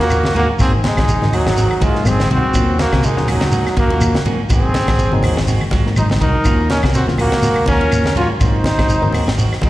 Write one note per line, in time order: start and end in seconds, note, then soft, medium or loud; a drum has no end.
0.00 0.20 F#3 medium
0.00 0.20 A#3 medium
0.00 0.33 A#3 loud
0.00 0.20 C#4 medium
0.00 0.21 F4 medium
0.00 0.34 F#4 loud
0.00 snare soft
0.00 ride bell medium
0.10 0.21 D#2 loud
0.10 0.27 F3 medium
0.10 ride bell medium
0.10 claves medium
0.10 shekere medium
0.24 snare medium
0.24 high conga loud
0.34 0.46 G#2 loud
0.34 0.51 D#3 medium
0.34 0.50 A#3 medium
0.34 0.47 A#3 loud
0.34 0.51 C#4 medium
0.34 0.51 F#4 medium
0.34 0.48 F#4 medium
0.34 ride bell medium
0.34 low conga medium
0.34 shekere soft
0.48 muted fingered electric bass stroke soft
0.59 0.80 G#1 loud
0.59 0.75 D#3 medium
0.59 0.81 F#3 medium
0.59 0.75 G#3 medium
0.59 0.81 A#3 medium
0.59 0.81 C4 medium
0.59 0.75 C4 medium
0.59 0.71 C4 loud
0.59 0.81 D#4 medium
0.59 0.75 F#4 medium
0.59 0.73 G#4 medium
0.59 kick loud
0.59 ride bell soft
0.59 claves medium
0.59 shekere loud
0.84 1.30 G#3 loud
0.84 1.30 D#4 medium
0.84 snare medium
0.84 ride bell medium
0.84 high conga loud
0.84 shekere soft
0.97 1.18 G#1 medium
0.97 1.13 D#3 medium
0.97 1.11 G#3 soft
0.97 1.11 C4 soft
0.97 1.11 F#4 medium
0.97 kick medium
0.97 snare medium
0.97 ride bell soft
0.97 high conga medium
0.97 claves medium
1.08 ride bell medium
1.08 shekere medium
1.22 1.31 G#1 medium
1.22 1.47 F#3 medium
1.22 1.47 A#3 medium
1.22 1.48 C4 medium
1.22 1.48 D#4 medium
1.22 snare soft
1.22 high conga medium
1.32 1.48 D#3 medium
1.32 1.84 F#3 loud
1.32 1.48 G#3 medium
1.32 1.48 C4 medium
1.32 1.86 D#4 medium
1.32 1.49 F#4 medium
1.32 open hi-hat medium
1.32 low conga medium
1.32 claves medium
1.32 shekere soft
1.46 1.67 G#1 medium
1.46 1.62 D#3 medium
1.46 snare medium
1.56 1.72 D#3 medium
1.56 1.72 G#3 medium
1.56 1.73 C4 medium
1.56 1.73 F#4 medium
1.56 ride bell soft
1.56 shekere medium
1.71 claves medium
1.81 2.02 G#2 medium
1.81 1.97 D#3 medium
1.81 1.97 F3 medium
1.81 1.97 G#3 medium
1.81 2.09 G#3 loud
1.81 1.97 C4 medium
1.81 2.10 F4 medium
1.81 1.97 F#4 medium
1.81 kick medium
1.81 ride bell medium
1.81 high conga loud
1.81 shekere soft
1.94 2.16 F#3 medium
1.94 2.16 A#3 medium
1.94 2.16 C4 medium
1.94 2.16 D#4 medium
1.94 snare soft
2.05 2.26 G#1 loud
2.05 2.22 F#3 medium
2.05 2.31 C4 loud
2.05 2.32 G#4 loud
2.05 snare soft
2.05 ride bell medium
2.05 claves medium
2.05 shekere loud
2.20 snare medium
2.20 high conga loud
2.29 2.41 C2 loud
2.29 2.46 D#3 medium
2.29 2.46 G#3 medium
2.29 2.46 C4 medium
2.29 2.77 C4 loud
2.29 2.46 F#4 medium
2.29 2.77 F#4 medium
2.29 ride bell medium
2.29 low conga medium
2.29 shekere soft
2.54 2.87 D#2 loud
2.54 2.70 D#3 medium
2.54 2.71 D#3 medium
2.54 2.76 F#3 medium
2.54 2.76 A#3 medium
2.54 2.70 A#3 medium
2.54 2.76 C#4 medium
2.54 2.70 C#4 medium
2.54 2.76 F4 medium
2.54 2.70 F#4 medium
2.54 kick loud
2.54 ride bell medium
2.54 claves medium
2.54 shekere loud
2.79 3.07 A#3 loud
2.79 3.06 F#4 medium
2.79 snare medium
2.79 ride bell medium
2.79 high conga loud
2.79 shekere soft
2.92 3.13 C3 medium
2.92 3.09 C3 medium
2.92 3.07 A#3 soft
2.92 3.06 C#4 medium
2.92 3.06 F#4 medium
2.92 kick medium
2.92 snare medium
2.92 high conga medium
2.92 claves medium
3.03 3.29 G#3 medium
3.03 3.29 D#4 medium
3.03 ride bell medium
3.03 shekere medium
3.17 3.37 A#1 medium
3.17 3.33 C#3 medium
3.17 3.42 F#3 medium
3.17 3.42 A#3 medium
3.17 3.43 C#4 medium
3.17 3.43 F#4 loud
3.17 snare soft
3.17 high conga medium
3.27 3.43 D#3 medium
3.27 3.75 F#3 medium
3.27 3.43 A#3 medium
3.27 3.44 C#4 medium
3.27 3.44 F#4 medium
3.27 open hi-hat medium
3.27 low conga medium
3.27 claves medium
3.27 shekere soft
3.31 3.75 D#4 medium
3.40 3.61 C#2 medium
3.40 3.57 C#3 medium
3.40 snare medium
3.40 ride bell medium
3.52 3.68 D#3 medium
3.52 3.68 A#3 medium
3.52 3.68 C#4 medium
3.52 3.68 F#4 medium
3.52 ride bell soft
3.52 high conga medium
3.52 shekere loud
3.67 snare soft
3.67 claves medium
3.76 3.98 D#2 medium
3.76 3.92 D#3 medium
3.76 3.92 A#3 medium
3.76 4.23 A#3 loud
3.76 3.93 C#4 medium
3.76 3.93 F#4 medium
3.76 4.24 F#4 medium
3.76 kick medium
3.76 ride bell medium
3.76 high conga loud
3.76 shekere soft
3.90 4.11 F#3 medium
3.90 4.11 A#3 medium
3.90 4.12 C#4 medium
3.90 4.12 F4 medium
3.90 ride bell medium
4.00 4.12 D#2 loud
4.00 4.17 F3 medium
4.00 ride bell medium
4.00 claves medium
4.00 shekere loud
4.14 snare medium
4.14 high conga loud
4.25 4.37 G#2 medium
4.25 4.41 D#3 medium
4.25 4.42 F#3 medium
4.25 4.41 A#3 medium
4.25 4.41 C#4 medium
4.25 4.42 F#4 medium
4.25 ride bell medium
4.25 low conga medium
4.25 shekere soft
4.39 muted fingered electric bass stroke soft
4.49 4.71 G#1 loud
4.49 4.65 D#3 medium
4.49 4.66 D#3 medium
4.49 4.71 F#3 medium
4.49 4.65 G#3 medium
4.49 4.72 A#3 medium
4.49 4.71 C4 medium
4.49 4.66 C4 medium
4.49 5.44 C4 loud
4.49 4.72 D#4 medium
4.49 4.66 F#4 medium
4.49 5.45 G#4 loud
4.49 kick loud
4.49 ride bell medium
4.49 claves medium
4.49 shekere medium
4.74 snare medium
4.74 ride bell medium
4.74 high conga loud
4.74 shekere soft
4.87 5.09 G#1 medium
4.87 5.03 D#3 medium
4.87 5.02 G#3 soft
4.87 5.02 C4 medium
4.87 5.01 F#4 medium
4.87 kick medium
4.87 snare medium
4.87 ride bell soft
4.87 high conga medium
4.87 claves medium
4.98 ride bell medium
4.98 shekere medium
5.12 5.22 G#1 medium
5.12 5.28 C3 medium
5.12 5.38 F#3 loud
5.12 5.38 A#3 loud
5.12 5.38 C4 loud
5.12 5.38 D#4 loud
5.12 high conga medium
5.23 5.39 D#3 medium
5.23 5.39 G#3 medium
5.23 5.39 C4 medium
5.23 5.39 F#4 medium
5.23 open hi-hat medium
5.23 low conga loud
5.23 claves medium
5.23 shekere soft
5.37 5.58 G#1 medium
5.37 5.52 D#3 medium
5.37 snare medium
5.47 5.63 D#3 medium
5.47 5.63 G#3 medium
5.47 5.64 C4 medium
5.47 5.64 F#4 medium
5.47 ride bell medium
5.47 shekere medium
5.60 high conga medium
5.60 claves medium
5.71 5.93 G#2 medium
5.71 5.87 D#3 medium
5.71 5.88 F3 medium
5.71 5.88 G#3 medium
5.71 5.88 C4 medium
5.71 5.88 F#4 medium
5.71 kick medium
5.71 snare soft
5.71 ride bell medium
5.71 high conga loud
5.71 shekere soft
5.86 6.07 F#3 medium
5.86 6.07 A#3 medium
5.86 6.07 C4 medium
5.86 6.07 D#4 medium
5.86 snare soft
5.96 6.17 G#1 loud
5.96 6.13 F#3 medium
5.96 6.09 D#4 medium
5.96 6.08 C5 medium
5.96 ride bell medium
5.96 claves medium
5.96 shekere loud
6.10 snare medium
6.10 high conga loud
6.20 6.32 C2 medium
6.20 6.36 D#3 medium
6.20 6.36 G#3 medium
6.20 6.37 C4 medium
6.20 6.67 D#4 loud
6.20 6.37 F#4 medium
6.20 6.67 A#4 medium
6.20 kick medium
6.20 ride bell medium
6.20 low conga medium
6.20 shekere soft
6.45 6.77 D#2 loud
6.45 6.61 D#3 medium
6.45 6.67 F#3 medium
6.45 6.61 A#3 medium
6.45 6.67 A#3 medium
6.45 6.61 C#4 medium
6.45 6.67 C#4 medium
6.45 6.67 F4 medium
6.45 6.61 F#4 medium
6.45 kick medium
6.45 ride bell medium
6.45 claves medium
6.45 shekere loud
6.70 6.82 C#4 medium
6.70 6.82 A#4 medium
6.70 snare medium
6.70 ride bell medium
6.70 high conga medium
6.70 shekere soft
6.83 7.04 C3 medium
6.83 6.99 C3 medium
6.83 6.98 A#3 soft
6.83 6.97 C#4 soft
6.83 6.97 F#4 medium
6.83 kick medium
6.83 snare medium
6.83 high conga medium
6.83 claves medium
6.94 7.05 C4 medium
6.94 7.07 F#4 medium
6.94 ride bell medium
6.94 shekere medium
7.07 7.28 A#1 medium
7.07 7.24 C#3 medium
7.07 7.33 F#3 medium
7.07 7.33 A#3 medium
7.07 7.33 C#4 medium
7.07 7.33 F4 loud
7.07 snare soft
7.07 high conga medium
7.18 7.34 D#3 soft
7.18 7.34 A#3 medium
7.18 7.65 A#3 loud
7.18 7.34 C#4 medium
7.18 7.35 F#4 medium
7.18 7.65 F#4 medium
7.18 open hi-hat medium
7.18 low conga medium
7.18 claves medium
7.18 shekere soft
7.32 7.53 C#2 medium
7.32 7.48 C#3 medium
7.32 snare medium
7.32 ride bell medium
7.42 7.58 D#3 medium
7.42 7.59 A#3 medium
7.42 7.59 C#4 medium
7.42 7.59 F#4 medium
7.42 snare soft
7.42 ride bell medium
7.42 high conga medium
7.42 shekere loud
7.56 high conga medium
7.56 claves medium
7.66 7.88 D#2 medium
7.66 7.83 D#3 medium
7.66 7.83 A#3 medium
7.66 7.83 C#4 medium
7.66 8.13 C#4 loud
7.66 7.83 F#4 medium
7.66 kick medium
7.66 ride bell medium
7.66 high conga loud
7.66 shekere soft
7.71 8.15 A#4 medium
7.80 8.01 F#3 medium
7.80 8.02 A#3 medium
7.80 8.02 C#4 medium
7.80 8.02 F4 medium
7.80 ride bell soft
7.92 8.03 D#2 loud
7.92 8.07 F3 loud
7.92 ride bell medium
7.92 claves medium
7.92 shekere loud
8.04 snare medium
8.04 high conga medium
8.16 8.27 G#2 loud
8.16 8.32 D#3 medium
8.16 8.32 F#3 medium
8.16 8.32 A#3 medium
8.16 8.32 C#4 medium
8.16 8.28 F4 loud
8.16 8.32 F#4 medium
8.16 ride bell medium
8.16 low conga medium
8.16 shekere soft
8.21 8.31 C#5 medium
8.30 muted fingered electric bass stroke soft
8.40 8.62 G#1 loud
8.40 8.56 D#3 medium
8.40 8.62 F#3 medium
8.40 8.56 G#3 medium
8.40 8.62 A#3 medium
8.40 8.56 C4 medium
8.40 8.62 C4 medium
8.40 8.63 D#4 medium
8.40 9.35 D#4 loud
8.40 8.56 F#4 medium
8.40 9.35 C5 medium
8.40 kick medium
8.40 ride bell medium
8.40 claves medium
8.40 shekere medium
8.64 snare medium
8.64 ride bell medium
8.64 high conga loud
8.64 shekere soft
8.77 8.99 G#1 medium
8.77 8.94 D#3 medium
8.77 8.92 G#3 soft
8.77 8.92 C4 soft
8.77 8.92 F#4 medium
8.77 kick medium
8.77 snare medium
8.77 ride bell medium
8.77 high conga medium
8.77 claves medium
8.89 ride bell medium
8.89 shekere medium
9.02 9.12 G#1 medium
9.02 9.18 D#3 medium
9.02 9.28 F#3 loud
9.02 9.28 A#3 medium
9.02 9.28 C4 loud
9.02 9.28 D#4 loud
9.02 high conga medium
9.13 9.29 D#3 medium
9.13 9.29 G#3 medium
9.13 9.29 C4 medium
9.13 9.30 F#4 medium
9.13 open hi-hat medium
9.13 low conga medium
9.13 claves medium
9.13 shekere soft
9.27 9.47 G#1 medium
9.27 9.43 D#3 medium
9.27 snare medium
9.37 9.53 D#3 medium
9.37 9.54 C4 medium
9.37 9.54 F#4 medium
9.37 muted clean electric guitar stroke medium
9.37 ride bell soft
9.37 shekere loud
9.52 muted fingered electric bass stroke soft
9.52 snare soft
9.52 claves medium
9.61 9.70 G#2 medium
9.61 9.70 D#3 medium
9.61 9.70 F3 medium
9.61 9.70 G#3 medium
9.61 9.70 C4 medium
9.61 9.70 F#4 medium
9.61 kick medium
9.61 ride bell medium
9.61 high conga loud
9.61 shekere soft
9.66 9.70 D#4 medium